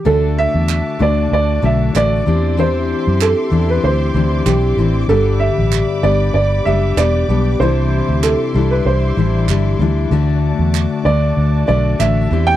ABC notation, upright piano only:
X:1
M:4/4
L:1/16
Q:"Swing 16ths" 1/4=96
K:Dmix
V:1 name="Upright piano"
A2 e4 d2 d2 e2 d4 | c4 A3 B c4 G4 | A2 e4 d2 d2 e2 d4 | c4 A3 B c4 z4 |
z6 d4 d2 e3 g |]